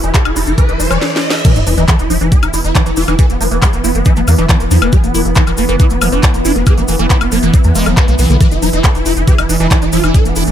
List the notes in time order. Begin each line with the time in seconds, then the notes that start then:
Already playing: E3 E4, riser
0.03 E1 E3 E4, closed hi-hat, cabasa
0.14 G#3 A4, kick, clap, closed hi-hat, cabasa
0.25 E1 E4, closed hi-hat, high woodblock
0.36 E1 E4, open hi-hat, cabasa
0.47 F1 E4, closed hi-hat, cabasa
0.58 E3 B4, kick, closed hi-hat, cabasa
0.69 E1 E3 E4, closed hi-hat
0.80 E1 E3 E4, open hi-hat, cabasa
0.90 E1 E3 D5, closed hi-hat, cabasa, high woodblock
1.01 snare
1.16 snare
1.30 snare
1.45 E3 B3 B4, kick, closed hi-hat, crash, sub drop, cabasa
1.56 E1 E3 E4, closed hi-hat, cabasa
1.67 E1 E3 E4, open hi-hat, cabasa
1.77 E1 E3 E4, closed hi-hat, cabasa
1.88 E3 A4, kick, clap, closed hi-hat, cabasa, high woodblock
1.99 E1 E4, closed hi-hat, cabasa
2.10 E1 F3 E4, open hi-hat, cabasa
2.21 F1 E3 E4, closed hi-hat, cabasa
2.32 G#3 G#4, kick, closed hi-hat, cabasa
2.43 E1 E4, closed hi-hat, cabasa, high woodblock
2.54 E1 E4, open hi-hat, cabasa
2.64 E1 E4, closed hi-hat, cabasa
2.75 E3 E4, kick, clap, closed hi-hat, cabasa
2.86 E1 E3 E4, closed hi-hat, cabasa
2.96 E1 E3 F4, open hi-hat, cabasa
3.08 E1 E3 E4, closed hi-hat, cabasa, high woodblock
3.19 E3 A4, kick, closed hi-hat, cabasa
3.30 E1 B3, closed hi-hat, cabasa
3.41 E1 F3 B3, open hi-hat, cabasa
3.51 E1 E3 B3, closed hi-hat, cabasa
3.62 G#3 G#4, kick, clap, closed hi-hat, cabasa, high woodblock
3.73 E1 B3, closed hi-hat, cabasa
3.84 E1 B3 E4, open hi-hat, cabasa
3.95 F1 B3, closed hi-hat, cabasa
4.05 E3 E4, kick, closed hi-hat, cabasa
4.16 E1 E3 B3, closed hi-hat, cabasa
4.28 E2 E3 B3, open hi-hat, cabasa, high woodblock
4.38 E1 E3 E4, closed hi-hat, cabasa
4.49 E3 B3, kick, clap, closed hi-hat, cabasa
4.60 E1 B3, closed hi-hat, cabasa
4.71 E2 F3 E4, open hi-hat, cabasa
4.82 E1 E3 B3, closed hi-hat, cabasa, high woodblock
4.92 G#3 G#4, kick, closed hi-hat, cabasa
5.04 E1 B3, closed hi-hat, cabasa
5.14 E1 B3 E4, open hi-hat, cabasa
5.25 E1 B3, closed hi-hat, cabasa
5.35 E3 E4, kick, clap, closed hi-hat, cabasa
5.47 E1 E3 B3, closed hi-hat, cabasa, high woodblock
5.57 E1 E3 B3, open hi-hat, cabasa
5.69 F1 E3 B3, closed hi-hat, cabasa
5.79 E3 E4, kick, closed hi-hat, cabasa
5.90 E1 B3, closed hi-hat, cabasa
6.01 E1 F3 B3, open hi-hat, cabasa, high woodblock
6.12 E1 E3 D4, closed hi-hat, cabasa
6.23 G#3 B3, kick, clap, closed hi-hat, cabasa
6.34 E1 B3, closed hi-hat, cabasa
6.45 E1 D4 E4, open hi-hat, cabasa
6.55 E1 B3, closed hi-hat, cabasa
6.66 E3 G#4, kick, closed hi-hat, cabasa, high woodblock
6.78 E1 E3 B3, closed hi-hat, cabasa
6.88 E1 E3 B3, open hi-hat, cabasa
6.99 E1 E3 B3, closed hi-hat, cabasa
7.10 E3 E4, kick, clap, closed hi-hat, cabasa
7.21 E1 B3, closed hi-hat, cabasa, high woodblock
7.32 E1 F3 B3, open hi-hat, cabasa
7.43 F1 E3 B3, closed hi-hat, cabasa
7.54 G#3 E4, kick, closed hi-hat, cabasa
7.64 E2 B3, closed hi-hat, cabasa
7.75 E1 G#3 B3, open hi-hat, cabasa
7.86 E1 F3 B3, closed hi-hat, cabasa, high woodblock
7.97 E3 B3, kick, clap, closed hi-hat, cabasa
8.08 B1 E3 B3, closed hi-hat, cabasa
8.18 B1 E3 C4, open hi-hat, cabasa
8.30 B1 D3 B3, closed hi-hat, cabasa
8.41 E3 D4 B4, kick, closed hi-hat, cabasa
8.51 E1 E4, closed hi-hat, cabasa
8.62 E1 F3 E4, open hi-hat, cabasa
8.73 E1 E3 E4, closed hi-hat, cabasa
8.84 G#3 A4, kick, clap, closed hi-hat, cabasa, high woodblock
8.95 E1 E4, closed hi-hat, cabasa
9.06 E1 E4, open hi-hat, cabasa
9.17 F1 E4, closed hi-hat, cabasa
9.28 E3 G#4, kick, closed hi-hat, cabasa
9.38 E1 E3 E4, closed hi-hat, cabasa, high woodblock
9.49 E1 E3 E4, open hi-hat, cabasa
9.60 E1 E3 E4, closed hi-hat, cabasa
9.71 E3 E4, kick, clap, closed hi-hat, cabasa
9.82 E1 E4, closed hi-hat, cabasa
9.92 E1 F3 F4, open hi-hat, cabasa
10.04 E1 E3 E4, closed hi-hat, cabasa, high woodblock
10.14 G#3 A4, kick, closed hi-hat, cabasa
10.25 E1 B3, closed hi-hat, cabasa
10.36 E1 B3 E4, open hi-hat, cabasa
10.47 E1 B3, closed hi-hat, cabasa